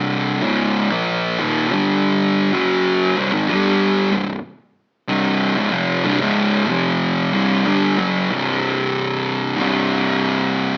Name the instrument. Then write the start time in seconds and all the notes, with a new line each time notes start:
distorted electric guitar
Already playing: C2 G2 C3
0.42 C#2 G#2 C#3
0.91 A#2 F3 A#3
1.39 D#2 A#2 D#3
1.71 G2 D3 G3
2.52 F#2 C#3 F#3
3.17 C2 G2
3.32 G#2 D#3
3.48 G2 D3 G3
4.12 C2 G2
5.08 C2 G2 C3
5.56 C#2 G#2
5.71 F2 C3 F3
6.04 C2 G2
6.20 C#2 G#2 C#3
6.69 F2 C3 F3
7.33 C2 G2 C3
7.65 G2 D3 G3
7.98 F#2 C#3 F#3
8.29 C2 G2 C3
9.57 C2 G2 C3